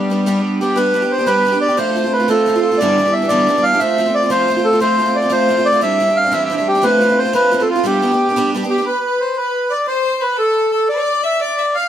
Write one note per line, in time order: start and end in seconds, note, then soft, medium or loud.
0.00 0.41 G3 medium
0.00 0.10 D4 medium
0.00 0.11 G4 medium
0.10 0.25 G3 soft
0.10 0.26 B3 medium
0.10 0.27 D4 medium
0.10 0.27 G4 medium
0.26 0.60 G3 medium
0.26 0.60 B3 medium
0.26 0.61 D4 medium
0.26 0.62 G4 medium
0.61 0.75 G3 medium
0.61 0.76 B3 medium
0.61 0.76 D4 medium
0.61 0.77 G4 medium
0.76 0.93 G3 medium
0.76 0.94 B3 medium
0.76 0.95 D4 medium
0.76 0.95 G4 medium
0.76 1.12 B4 medium
0.94 1.02 G3 medium
0.94 1.03 B3 soft
0.94 1.02 D4 medium
0.94 1.01 G4 medium
1.02 1.20 B3 soft
1.02 1.18 D4 soft
1.02 1.17 G4 medium
1.12 1.28 C5 medium
1.18 1.26 B3 soft
1.18 1.27 D4 soft
1.18 1.27 G4 soft
1.26 1.43 G3 medium
1.26 1.45 B3 medium
1.26 1.45 D4 medium
1.26 1.46 G4 medium
1.26 1.59 B4 loud
1.45 1.53 G3 soft
1.45 1.54 B3 medium
1.45 1.52 D4 medium
1.45 1.51 G4 medium
1.52 1.70 B3 soft
1.52 1.69 D4 soft
1.52 1.67 G4 medium
1.61 1.78 D5 medium
1.68 1.77 B3 soft
1.68 1.78 D4 medium
1.68 1.77 G4 medium
1.77 1.94 F3 medium
1.77 1.96 A3 medium
1.77 1.95 C4 medium
1.77 1.97 F4 medium
1.77 2.13 C5 medium
1.96 2.04 F3 soft
1.96 2.05 A3 medium
1.96 2.04 C4 medium
1.96 2.03 F4 medium
2.04 2.20 A3 soft
2.04 2.22 C4 soft
2.04 2.19 F4 soft
2.13 2.29 B4 medium
2.20 2.28 A3 soft
2.20 2.27 C4 soft
2.20 2.28 F4 medium
2.28 2.45 F3 medium
2.28 2.47 A3 medium
2.28 2.46 C4 medium
2.28 2.48 F4 medium
2.28 2.60 A4 medium
2.46 2.54 F3 medium
2.46 2.56 A3 medium
2.46 2.55 C4 medium
2.46 2.55 F4 medium
2.56 2.72 A3 soft
2.56 2.73 C4 soft
2.56 2.70 F4 medium
2.62 2.79 A4 medium
2.72 2.80 A3 soft
2.72 2.81 C4 soft
2.72 2.79 F4 medium
2.78 2.98 G2 medium
2.78 2.98 D3 medium
2.78 2.97 E3 medium
2.78 2.98 G3 medium
2.78 3.14 D5 medium
2.82 2.99 B3 medium
2.82 2.99 D4 medium
2.98 3.06 E3 medium
2.98 3.06 G3 medium
2.98 3.06 B3 medium
2.98 3.04 D4 medium
3.05 3.23 E3 soft
3.05 3.23 G3 soft
3.05 3.22 B3 soft
3.05 3.21 D4 soft
3.13 3.30 E5 medium
3.22 3.29 E3 soft
3.22 3.29 G3 soft
3.22 3.30 B3 soft
3.22 3.30 D4 soft
3.28 3.48 G2 medium
3.28 3.48 D3 medium
3.28 3.46 E3 medium
3.28 3.47 G3 medium
3.28 3.47 B3 medium
3.28 3.49 D4 medium
3.28 3.64 D5 medium
3.47 3.55 E3 medium
3.47 3.56 G3 medium
3.47 3.56 B3 medium
3.47 3.55 D4 medium
3.56 3.73 E3 soft
3.56 3.73 G3 soft
3.56 3.73 B3 soft
3.56 3.72 D4 soft
3.63 3.80 F5 loud
3.73 3.80 E3 soft
3.73 3.81 G3 soft
3.73 3.81 B3 soft
3.73 3.81 D4 medium
3.79 3.97 F3 medium
3.79 3.99 A3 medium
3.79 3.98 C4 medium
3.79 3.99 F4 medium
3.79 4.15 E5 loud
3.98 4.06 F3 medium
3.98 4.07 A3 medium
3.98 4.07 C4 medium
3.98 4.05 F4 medium
4.06 4.23 A3 soft
4.06 4.24 C4 soft
4.06 4.21 F4 soft
4.15 4.30 D5 medium
4.23 4.30 A3 soft
4.23 4.30 C4 soft
4.23 4.31 F4 soft
4.30 4.47 F3 medium
4.30 4.49 A3 medium
4.30 4.49 C4 medium
4.30 4.50 F4 medium
4.30 4.66 C5 medium
4.48 4.57 F3 medium
4.48 4.57 A3 medium
4.48 4.57 C4 medium
4.48 4.55 F4 medium
4.56 4.74 A3 soft
4.56 4.74 C4 soft
4.56 4.72 F4 medium
4.64 4.80 A4 medium
4.73 4.81 A3 medium
4.73 4.80 C4 soft
4.73 4.81 F4 medium
4.80 4.97 F3 medium
4.80 4.99 A3 medium
4.80 4.98 C4 medium
4.80 5.00 F4 medium
4.80 5.16 C5 medium
4.98 5.07 F3 soft
4.98 5.07 A3 medium
4.98 5.08 C4 medium
4.98 5.05 F4 medium
5.06 5.22 A3 soft
5.06 5.24 C4 soft
5.06 5.21 F4 medium
5.16 5.32 D5 medium
5.22 5.30 A3 soft
5.22 5.29 C4 soft
5.22 5.30 F4 soft
5.29 5.48 F3 medium
5.29 5.50 A3 medium
5.29 5.49 C4 medium
5.29 5.50 F4 medium
5.29 5.67 C5 medium
5.49 5.57 F3 medium
5.49 5.58 A3 medium
5.49 5.58 C4 medium
5.49 5.56 F4 medium
5.57 5.73 A3 soft
5.57 5.74 C4 soft
5.57 5.71 F4 medium
5.66 5.81 D5 medium
5.73 5.82 A3 soft
5.73 5.81 C4 medium
5.73 5.81 F4 medium
5.81 5.99 E3 medium
5.81 6.00 G3 medium
5.81 6.01 C4 medium
5.81 6.01 D4 medium
5.81 6.18 E5 medium
6.00 6.08 E3 medium
6.00 6.09 G3 medium
6.00 6.09 C4 medium
6.00 6.07 D4 medium
6.08 6.26 G3 soft
6.08 6.25 C4 soft
6.08 6.23 D4 soft
6.16 6.33 F5 medium
6.24 6.31 G3 soft
6.24 6.31 C4 soft
6.24 6.32 D4 soft
6.32 6.49 E3 medium
6.32 6.50 G3 medium
6.32 6.51 C4 medium
6.32 6.52 D4 medium
6.32 6.44 E5 medium
6.45 6.56 E5 medium
6.50 6.59 E3 medium
6.50 6.59 G3 medium
6.50 6.59 C4 medium
6.50 6.57 D4 medium
6.57 6.75 C4 soft
6.57 6.74 D4 soft
6.57 6.68 E5 medium
6.61 6.76 G3 soft
6.68 6.84 G4 medium
6.75 6.82 G3 soft
6.75 6.82 C4 medium
6.75 6.83 D4 medium
6.82 6.99 F3 medium
6.82 7.02 A3 medium
6.82 7.00 C4 medium
6.82 7.02 F4 medium
6.82 7.19 B4 medium
7.01 7.09 F3 soft
7.01 7.10 A3 medium
7.01 7.10 C4 medium
7.01 7.08 F4 medium
7.09 7.26 A3 soft
7.09 7.27 C4 soft
7.09 7.24 F4 medium
7.19 7.33 C5 medium
7.25 7.34 A3 medium
7.25 7.33 C4 soft
7.25 7.34 F4 soft
7.33 7.50 F3 medium
7.33 7.52 A3 medium
7.33 7.52 C4 medium
7.33 7.53 F4 medium
7.33 7.62 B4 medium
7.52 7.60 F3 medium
7.52 7.60 A3 medium
7.52 7.61 C4 medium
7.52 7.59 F4 medium
7.60 7.76 A3 soft
7.60 7.77 C4 soft
7.60 7.74 F4 medium
7.60 7.68 A4 medium
7.70 7.86 F4 medium
7.76 7.85 A3 medium
7.76 7.84 C4 soft
7.76 7.84 F4 medium
7.83 8.01 G3 medium
7.83 8.02 B3 medium
7.83 8.03 D4 medium
7.83 8.04 G4 medium
7.83 8.51 G4 medium
8.02 8.11 G3 soft
8.02 8.11 B3 medium
8.02 8.12 D4 medium
8.02 8.10 G4 medium
8.12 8.29 B3 soft
8.12 8.29 D4 soft
8.12 8.28 G4 medium
8.29 8.36 B3 soft
8.29 8.37 D4 soft
8.29 8.36 G4 soft
8.36 8.53 G3 medium
8.36 8.54 B3 medium
8.36 8.54 D4 medium
8.36 8.55 G4 medium
8.54 8.62 G3 medium
8.54 8.63 B3 medium
8.54 8.63 D4 medium
8.54 8.62 G4 medium
8.63 8.80 B3 soft
8.63 8.78 D4 medium
8.63 8.77 G4 medium
8.70 8.85 G4 medium
8.78 8.88 B3 soft
8.78 8.87 D4 soft
8.78 8.86 G4 medium
8.86 9.22 B4 medium
8.86 9.03 B4 medium
9.03 9.34 B4 medium
9.21 9.38 C5 medium
9.36 9.69 B4 medium
9.36 9.73 B4 medium
9.69 9.77 D5 medium
9.69 9.86 D5 medium
9.86 10.22 C5 medium
9.86 10.23 C5 medium
10.20 10.38 B4 medium
10.20 10.37 B4 medium
10.37 10.71 A4 medium
10.37 10.72 A4 medium
10.71 10.87 A4 medium
10.71 10.88 A4 medium
10.88 11.25 D5 medium
10.88 11.21 D5 medium
11.24 11.40 E5 medium
11.24 11.41 E5 medium
11.41 11.76 D5 medium
11.41 11.58 D5 medium
11.58 11.66 E5 medium
11.75 11.88 F5 medium